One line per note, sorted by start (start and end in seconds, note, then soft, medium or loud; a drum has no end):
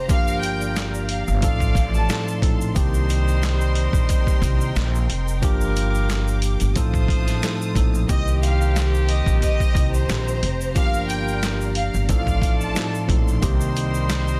0.00 1.39 G4 medium
0.00 1.39 A#5 medium
0.08 1.24 G1 loud
0.08 1.41 F3 medium
0.08 1.08 G3 medium
0.08 1.43 A#3 medium
0.08 1.43 D4 medium
0.08 1.08 F4 medium
0.08 1.43 G4 loud
0.08 1.08 A#4 medium
0.08 1.41 D5 medium
0.08 2.73 F5 medium
0.08 0.40 F5 loud
0.08 kick loud
0.08 closed hi-hat medium
0.08 shaker medium
0.28 shaker medium
0.41 0.72 G5 medium
0.41 closed hi-hat medium
0.41 shaker soft
0.61 shaker medium
0.76 snare loud
0.76 clap medium
0.76 closed hi-hat medium
0.76 shaker medium
0.94 shaker soft
1.09 1.26 F5 medium
1.09 closed hi-hat medium
1.28 1.41 G1 medium
1.28 shaker medium
1.41 1.73 A1 loud
1.41 2.04 A2 medium
1.41 2.04 F3 medium
1.41 2.41 A3 medium
1.41 2.05 C4 medium
1.41 2.74 D#4 medium
1.41 2.05 D#4 medium
1.41 2.41 F4 medium
1.41 2.75 A4 medium
1.41 2.05 A4 loud
1.41 2.41 D5 medium
1.41 1.91 F5 medium
1.41 5.38 C6 loud
1.41 kick medium
1.41 closed hi-hat loud
1.41 shaker medium
1.60 kick medium
1.60 shaker medium
1.75 2.06 A1 medium
1.75 kick loud
1.75 closed hi-hat medium
1.75 shaker medium
1.94 2.25 A5 medium
1.94 shaker medium
2.07 2.39 A2 medium
2.07 2.40 F3 medium
2.07 2.40 C4 medium
2.07 2.40 D#4 medium
2.07 2.41 A4 medium
2.07 snare loud
2.07 clap loud
2.07 closed hi-hat medium
2.07 shaker medium
2.28 shaker medium
2.41 2.73 A#1 medium
2.41 2.73 A2 medium
2.41 2.73 F3 medium
2.41 2.73 C4 medium
2.41 2.74 D#4 medium
2.41 2.74 A4 medium
2.41 kick medium
2.41 closed hi-hat medium
2.61 shaker medium
2.74 3.90 C2 loud
2.74 5.05 D#3 loud
2.74 5.05 G3 medium
2.74 5.06 A#3 medium
2.74 5.06 C4 medium
2.74 5.05 D#4 medium
2.74 5.07 G4 loud
2.74 6.72 A#4 medium
2.74 5.05 C5 loud
2.74 5.40 D#5 medium
2.74 6.72 G5 medium
2.74 kick loud
2.74 closed hi-hat medium
2.74 shaker medium
2.94 shaker medium
3.09 closed hi-hat medium
3.09 shaker soft
3.28 shaker medium
3.43 snare loud
3.43 clap medium
3.43 closed hi-hat medium
3.43 shaker medium
3.61 shaker soft
3.75 closed hi-hat medium
3.93 4.07 A#1 medium
3.93 kick loud
3.93 shaker medium
4.09 kick loud
4.09 closed hi-hat medium
4.09 shaker medium
4.27 kick medium
4.27 shaker soft
4.42 4.72 C2 loud
4.42 kick loud
4.42 closed hi-hat medium
4.42 shaker medium
4.61 shaker medium
4.76 5.06 A#1 loud
4.76 snare loud
4.76 clap medium
4.76 closed hi-hat medium
4.76 shaker medium
4.95 shaker medium
5.10 closed hi-hat medium
5.28 shaker medium
5.42 6.57 G1 loud
5.42 6.74 F3 medium
5.42 6.40 G3 medium
5.42 6.76 A#3 medium
5.42 6.76 D4 medium
5.42 6.40 F4 medium
5.42 6.77 G4 loud
5.42 6.40 A#4 medium
5.42 6.74 F5 medium
5.42 6.75 D6 medium
5.42 kick loud
5.42 closed hi-hat medium
5.42 shaker medium
5.61 shaker medium
5.76 closed hi-hat medium
5.76 shaker soft
5.95 shaker medium
6.10 snare loud
6.10 clap medium
6.10 closed hi-hat medium
6.10 shaker medium
6.28 shaker soft
6.42 closed hi-hat medium
6.42 shaker medium
6.60 6.75 G1 medium
6.60 closed hi-hat medium
6.60 shaker medium
6.75 7.06 A1 loud
6.75 7.37 A2 medium
6.75 7.38 F3 medium
6.75 7.74 A3 medium
6.75 7.38 C4 medium
6.75 7.38 D#4 medium
6.75 7.74 F4 medium
6.75 7.39 A4 loud
6.75 8.08 C5 medium
6.75 7.74 C5 medium
6.75 8.08 F5 medium
6.75 8.08 A5 medium
6.75 8.08 D#6 medium
6.75 kick loud
6.75 closed hi-hat loud
6.75 shaker medium
6.94 kick medium
6.94 shaker soft
7.08 7.39 A1 medium
7.08 kick loud
7.08 closed hi-hat medium
7.28 snare soft
7.28 closed hi-hat medium
7.28 shaker medium
7.41 7.73 A2 medium
7.41 7.73 F3 medium
7.41 7.73 C4 medium
7.41 7.74 D#4 medium
7.41 7.74 A4 medium
7.41 snare loud
7.41 clap medium
7.41 closed hi-hat medium
7.41 shaker medium
7.62 shaker medium
7.74 8.06 A#1 medium
7.74 8.06 A2 medium
7.74 8.06 F3 medium
7.74 8.07 C4 medium
7.74 8.07 D#4 medium
7.74 8.07 A4 medium
7.74 kick medium
7.74 closed hi-hat medium
7.74 shaker soft
7.95 shaker medium
8.07 9.24 C2 loud
8.07 10.39 D#3 loud
8.07 10.38 D#3 medium
8.07 10.39 A#3 medium
8.07 10.38 C4 medium
8.07 10.39 C4 medium
8.07 10.38 G4 loud
8.07 12.06 G4 medium
8.07 10.40 G4 loud
8.07 10.74 C5 medium
8.07 8.40 D#5 loud
8.07 10.74 D#5 medium
8.07 12.06 A#5 medium
8.07 kick loud
8.07 closed hi-hat medium
8.07 shaker medium
8.28 shaker medium
8.43 8.73 F5 medium
8.43 closed hi-hat medium
8.43 shaker soft
8.61 shaker medium
8.76 snare loud
8.76 clap medium
8.76 closed hi-hat medium
8.76 shaker medium
8.94 shaker soft
9.09 9.26 D#5 medium
9.09 closed hi-hat medium
9.26 9.40 A#1 medium
9.26 kick loud
9.26 shaker medium
9.42 9.91 D#5 medium
9.42 kick medium
9.42 closed hi-hat medium
9.42 shaker medium
9.60 kick medium
9.60 shaker medium
9.75 10.06 C2 medium
9.75 kick loud
9.75 closed hi-hat medium
9.75 shaker medium
9.94 10.72 C5 medium
9.94 shaker medium
10.09 10.39 A#1 loud
10.09 snare loud
10.09 clap medium
10.09 closed hi-hat medium
10.09 shaker medium
10.28 shaker medium
10.43 10.76 F1 medium
10.43 closed hi-hat medium
10.61 shaker medium
10.75 11.90 G1 loud
10.75 12.07 F3 medium
10.75 11.74 G3 medium
10.75 12.09 A#3 medium
10.75 12.10 D4 medium
10.75 11.74 F4 medium
10.75 12.10 G4 loud
10.75 11.74 A#4 medium
10.75 12.08 D5 medium
10.75 13.40 F5 medium
10.75 11.06 F5 loud
10.75 kick loud
10.75 closed hi-hat medium
10.75 shaker medium
10.94 shaker medium
11.08 11.39 G5 medium
11.08 closed hi-hat medium
11.08 shaker soft
11.28 shaker medium
11.43 snare loud
11.43 clap medium
11.43 closed hi-hat medium
11.43 shaker medium
11.61 shaker soft
11.75 11.92 F5 medium
11.75 closed hi-hat medium
11.94 12.08 G1 medium
11.94 shaker medium
12.08 12.40 A1 loud
12.08 12.70 A2 medium
12.08 12.71 F3 medium
12.08 13.07 A3 medium
12.08 12.71 C4 medium
12.08 13.41 D#4 medium
12.08 12.71 D#4 medium
12.08 13.07 F4 medium
12.08 13.41 A4 medium
12.08 12.72 A4 loud
12.08 13.07 D5 medium
12.08 12.58 F5 medium
12.08 14.40 C6 medium
12.08 kick loud
12.08 closed hi-hat loud
12.08 shaker medium
12.27 kick medium
12.27 shaker medium
12.42 12.72 A1 medium
12.42 kick loud
12.42 closed hi-hat medium
12.42 shaker medium
12.61 12.92 A5 medium
12.61 shaker medium
12.74 13.06 A2 medium
12.74 13.06 F3 medium
12.74 13.07 C4 medium
12.74 13.07 D#4 medium
12.74 13.07 A4 medium
12.74 snare loud
12.74 clap medium
12.74 closed hi-hat medium
12.74 shaker medium
12.95 shaker medium
13.07 13.39 A#1 loud
13.07 13.39 A2 medium
13.07 13.40 F3 medium
13.07 13.40 C4 medium
13.07 13.40 D#4 medium
13.07 13.41 A4 medium
13.07 kick loud
13.07 closed hi-hat medium
13.28 shaker medium
13.40 14.40 C2 loud
13.40 14.40 D#3 loud
13.40 14.40 G3 medium
13.40 14.40 A#3 medium
13.40 14.40 C4 medium
13.40 14.40 D#4 medium
13.40 14.40 G4 loud
13.40 14.40 A#4 medium
13.40 14.40 C5 loud
13.40 14.40 D#5 medium
13.40 14.40 G5 medium
13.40 kick loud
13.40 closed hi-hat medium
13.40 shaker medium
13.61 shaker medium
13.76 closed hi-hat medium
13.76 shaker soft
13.95 shaker medium
14.09 snare loud
14.09 clap medium
14.09 closed hi-hat medium
14.09 shaker medium
14.28 shaker soft